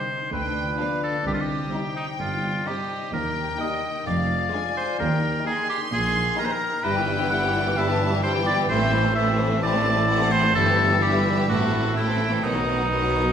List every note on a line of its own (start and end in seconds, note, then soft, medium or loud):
0.00 0.35 C3 medium
0.00 0.21 D#3 medium
0.00 0.21 C4 medium
0.00 0.16 D#4 soft
0.00 0.21 D#4 medium
0.00 0.21 G4 medium
0.00 0.35 G4 soft
0.00 0.32 C5 medium
0.00 0.35 C5 soft
0.00 0.35 D#5 soft
0.17 0.35 D#4 soft
0.33 0.70 D2 medium
0.33 1.29 D3 medium
0.33 1.02 B4 medium
0.33 0.77 G5 medium
0.48 1.10 D4 soft
0.64 1.29 F4 soft
0.80 1.15 F3 medium
0.80 1.15 B3 medium
0.80 1.15 D4 medium
0.80 1.15 F4 medium
0.80 1.29 D5 soft
0.80 1.27 F5 medium
0.95 1.29 B4 medium
1.03 1.26 A4 medium
1.11 1.29 D4 soft
1.26 1.64 C2 medium
1.26 3.15 C3 medium
1.26 1.35 G4 medium
1.26 1.74 D#5 medium
1.34 1.42 F4 medium
1.41 2.03 D#4 soft
1.41 1.96 G4 medium
1.58 2.50 G4 soft
1.73 2.08 G3 medium
1.73 2.08 C4 medium
1.73 2.09 D#4 medium
1.73 2.66 D#5 medium
1.73 2.67 G5 medium
1.89 2.81 C5 soft
1.97 2.07 D#4 medium
2.04 2.35 D#4 medium
2.20 2.57 G1 medium
2.20 2.58 G2 medium
2.20 4.08 G3 soft
2.20 2.68 F4 medium
2.36 2.97 D#4 soft
2.51 3.43 G4 soft
2.67 3.02 G3 medium
2.67 3.02 C4 medium
2.67 3.02 D#4 medium
2.67 3.13 G4 medium
2.67 3.59 D#5 soft
2.67 3.14 D#5 medium
2.83 3.15 C5 soft
2.98 3.28 D#4 soft
3.13 3.50 D#2 medium
3.13 3.51 D#2 medium
3.13 4.08 D#3 medium
3.13 3.59 A#4 medium
3.13 4.05 G5 medium
3.29 3.90 D#4 soft
3.44 4.08 G4 soft
3.60 3.95 G3 medium
3.60 3.95 A#3 medium
3.60 3.95 D#4 medium
3.60 3.95 G4 medium
3.60 4.08 D#5 medium
3.60 4.06 D#5 medium
3.75 4.08 A#4 medium
3.91 4.08 D#4 medium
4.06 4.43 F1 medium
4.06 4.44 F1 medium
4.06 4.44 F2 medium
4.06 5.02 F3 medium
4.06 4.75 D5 medium
4.06 4.54 F5 medium
4.22 4.83 F4 soft
4.38 5.02 G#4 soft
4.53 4.88 G#3 medium
4.53 4.88 D4 medium
4.53 4.88 F4 medium
4.53 5.02 F5 medium
4.53 5.00 G#5 medium
4.69 5.02 D5 medium
4.77 4.99 C5 medium
4.84 5.02 F4 soft
4.99 5.37 D#2 medium
4.99 6.86 D#3 medium
4.99 5.45 A#4 medium
4.99 5.45 G5 medium
5.15 5.76 D#4 soft
5.31 6.22 G4 medium
5.45 5.81 D#3 medium
5.45 5.81 A#3 medium
5.45 5.80 D#4 medium
5.45 5.80 G4 medium
5.45 5.69 G#4 medium
5.45 6.37 D#5 medium
5.45 6.37 C6 medium
5.62 6.53 A#4 medium
5.69 5.80 G4 medium
5.77 6.07 D#4 medium
5.92 6.29 A#1 medium
5.92 6.29 A#2 medium
5.92 6.87 A#3 medium
5.92 6.38 G#4 medium
6.08 6.68 D#4 medium
6.24 7.45 G4 medium
6.38 6.73 D#3 medium
6.38 6.73 A#3 medium
6.38 6.73 D#4 medium
6.38 6.72 G4 medium
6.38 6.47 A#4 medium
6.38 6.87 D#5 medium
6.38 6.85 A#5 medium
6.45 6.53 C5 medium
6.52 6.86 A#4 loud
6.52 6.87 A#4 medium
6.69 6.86 D#4 medium
6.84 8.65 G1 medium
6.84 8.66 G1 medium
6.84 7.76 G2 medium
6.84 8.65 G2 medium
6.84 6.96 G3 medium
6.84 6.95 E4 medium
6.84 7.30 B4 medium
6.84 7.75 G5 medium
6.96 7.08 E3 medium
6.96 7.08 B3 medium
6.96 7.08 G4 medium
7.08 7.20 G3 medium
7.08 7.19 E4 medium
7.15 8.07 E4 medium
7.19 7.31 E3 medium
7.19 7.31 B3 medium
7.19 7.31 G4 medium
7.30 7.42 G3 medium
7.30 7.43 E4 medium
7.30 8.22 B4 medium
7.30 7.79 F#5 loud
7.43 7.54 E3 medium
7.43 7.54 B3 medium
7.43 7.54 G4 medium
7.43 8.38 G4 medium
7.55 7.66 G3 medium
7.55 7.66 E4 medium
7.61 8.53 B3 medium
7.66 7.77 E3 medium
7.66 7.77 B3 medium
7.66 7.77 G4 medium
7.77 8.71 G2 medium
7.77 7.88 G3 medium
7.77 7.88 E4 medium
7.77 8.22 E5 medium
7.77 8.23 A5 medium
7.89 8.00 E3 medium
7.89 8.71 G3 medium
7.89 8.01 B3 medium
7.89 8.01 G4 medium
8.01 8.12 G3 medium
8.01 8.12 E4 medium
8.08 8.23 E3 medium
8.08 8.99 E4 medium
8.13 8.24 B3 medium
8.13 8.24 G4 medium
8.23 8.34 G3 medium
8.23 8.35 E4 medium
8.23 8.71 B4 medium
8.23 8.33 C5 medium
8.23 8.68 G5 medium
8.35 8.47 E3 medium
8.35 8.47 B3 medium
8.35 8.47 G4 medium
8.35 8.71 G4 medium
8.46 8.58 G3 medium
8.46 8.59 E4 medium
8.46 8.57 D5 loud
8.54 8.68 E3 medium
8.54 8.71 B3 medium
8.59 8.70 B3 medium
8.59 8.70 G4 medium
8.69 10.52 A1 medium
8.69 10.57 A2 medium
8.69 10.52 A2 medium
8.69 8.80 E3 medium
8.69 8.80 A3 medium
8.69 8.81 C4 medium
8.69 8.81 E4 medium
8.69 9.15 C5 loud
8.69 9.15 E5 medium
8.81 8.91 E3 medium
8.81 8.91 A3 medium
8.81 8.93 A3 medium
8.81 9.46 A3 medium
8.81 8.93 C4 medium
8.92 9.03 E3 medium
8.92 9.03 A3 medium
8.92 9.04 C4 medium
8.92 9.05 E4 medium
9.00 9.92 E4 medium
9.04 9.14 E3 medium
9.04 9.14 A3 medium
9.04 9.16 A3 medium
9.04 9.16 C4 medium
9.15 9.26 E3 medium
9.15 9.26 A3 medium
9.15 9.27 C4 medium
9.15 9.27 E4 medium
9.15 10.07 A4 medium
9.15 9.61 C5 medium
9.15 9.61 E5 loud
9.27 9.37 E3 medium
9.27 9.37 A3 medium
9.27 9.40 A3 medium
9.27 9.38 C4 medium
9.31 10.23 C5 medium
9.39 9.49 E3 medium
9.39 9.49 A3 medium
9.39 9.50 C4 medium
9.39 9.51 E4 medium
9.47 9.61 E3 medium
9.47 9.77 A3 medium
9.47 9.61 A3 medium
9.51 9.63 A3 medium
9.51 9.62 C4 medium
9.62 9.72 E3 medium
9.62 10.57 E3 medium
9.62 9.72 A3 medium
9.62 9.73 C4 medium
9.62 9.73 E4 medium
9.62 10.33 D5 loud
9.62 10.08 A5 medium
9.73 9.84 E3 medium
9.73 9.84 A3 medium
9.73 9.86 A3 medium
9.73 9.85 C4 medium
9.78 10.38 A3 medium
9.85 9.95 E3 medium
9.85 9.95 A3 medium
9.85 9.96 C4 medium
9.85 9.97 E4 medium
9.93 10.07 E3 medium
9.93 10.07 A3 medium
9.93 10.09 A3 medium
9.93 10.08 C4 medium
9.93 10.85 E4 medium
10.08 10.19 E3 medium
10.08 10.19 A3 medium
10.08 10.19 C4 medium
10.08 10.20 E4 medium
10.08 10.57 A4 medium
10.08 10.54 F#5 medium
10.20 10.30 E3 medium
10.20 10.32 A3 medium
10.20 10.30 A3 medium
10.20 10.32 C4 medium
10.24 10.57 C5 medium
10.31 10.42 E3 medium
10.31 10.42 A3 medium
10.31 10.42 C4 medium
10.31 10.44 E4 medium
10.31 10.54 C5 loud
10.40 10.53 E3 medium
10.40 10.57 A3 medium
10.40 10.55 A3 medium
10.40 10.55 C4 medium
10.44 10.56 A3 medium
10.54 11.51 G1 medium
10.54 11.47 G1 medium
10.54 11.51 G2 medium
10.54 11.47 G2 medium
10.54 10.65 E3 medium
10.54 10.65 G3 medium
10.54 10.66 E4 medium
10.54 11.04 A4 loud
10.54 11.96 E5 medium
10.66 10.76 E3 medium
10.66 10.76 G3 medium
10.66 10.79 B3 medium
10.66 10.79 G4 medium
10.71 11.32 B3 medium
10.77 10.88 E3 medium
10.77 10.88 G3 medium
10.77 10.90 E4 medium
10.86 11.00 E3 medium
10.86 11.00 G3 medium
10.86 11.02 B3 medium
10.86 11.16 E4 medium
10.86 11.02 G4 medium
11.01 11.11 E3 medium
11.01 11.12 G3 medium
11.01 11.13 E4 medium
11.01 11.48 G4 medium
11.01 11.51 B4 medium
11.13 11.23 E3 medium
11.13 11.23 G3 medium
11.13 11.26 B3 medium
11.13 11.26 G4 medium
11.17 11.79 E4 medium
11.24 11.35 E3 medium
11.24 11.35 G3 medium
11.24 11.38 E4 medium
11.33 11.48 E3 medium
11.33 11.49 G3 medium
11.33 11.51 B3 medium
11.37 11.49 B3 medium
11.37 11.49 G4 medium
11.48 12.44 A1 medium
11.48 12.46 A2 medium
11.48 12.44 A2 medium
11.48 11.59 A3 medium
11.48 11.60 A3 medium
11.48 11.60 E4 medium
11.48 11.95 F#4 medium
11.60 11.72 E3 medium
11.60 11.72 C4 medium
11.60 11.73 C4 medium
11.60 11.73 A4 medium
11.64 12.26 A3 medium
11.71 11.84 A3 medium
11.71 11.85 A3 medium
11.71 11.85 E4 medium
11.80 11.96 E3 medium
11.80 11.96 C4 medium
11.80 12.46 E4 medium
11.84 11.96 A4 medium
11.95 12.07 A3 medium
11.95 12.08 E4 medium
11.95 12.45 E4 medium
11.95 12.46 A4 medium
11.95 12.43 G5 medium
12.07 12.19 E3 medium
12.07 12.19 C4 medium
12.07 12.20 C4 medium
12.07 12.20 A4 medium
12.11 12.46 C5 medium
12.18 12.31 A3 medium
12.18 12.32 A3 medium
12.18 12.32 E4 medium
12.27 12.43 E3 medium
12.27 12.46 A3 medium
12.27 12.43 C4 medium
12.31 12.44 C4 medium
12.31 12.44 A4 medium
12.43 13.33 B1 medium
12.43 13.33 B2 medium
12.43 12.54 D#3 medium
12.43 12.54 F#3 medium
12.43 12.54 B3 medium
12.43 12.54 D#4 medium
12.43 13.33 D#4 medium
12.43 12.87 F#5 medium
12.55 12.66 D#3 medium
12.55 12.66 F#3 medium
12.55 12.67 B3 soft
12.55 12.67 D#4 medium
12.60 13.23 B3 medium
12.67 12.78 D#3 soft
12.67 12.78 F#3 medium
12.67 12.79 B3 medium
12.67 12.79 D#4 medium
12.76 12.89 D#3 medium
12.76 12.89 F#3 medium
12.76 13.07 B4 soft
12.80 12.91 B3 medium
12.80 12.91 D#4 medium
12.91 13.02 D#3 medium
12.91 13.02 F#3 medium
12.91 13.04 B3 medium
12.91 13.03 D#4 medium
12.91 13.33 F#4 medium
12.91 13.33 F#5 medium
13.04 13.14 D#3 medium
13.04 13.14 F#3 medium
13.04 13.16 B3 medium
13.04 13.16 D#4 medium
13.08 13.33 B4 medium
13.15 13.26 D#3 medium
13.15 13.26 F#3 medium
13.15 13.28 B3 medium
13.15 13.28 D#4 medium
13.24 13.33 D#3 medium
13.24 13.33 F#3 medium
13.24 13.33 B3 medium
13.29 13.33 B3 soft
13.29 13.33 D#4 medium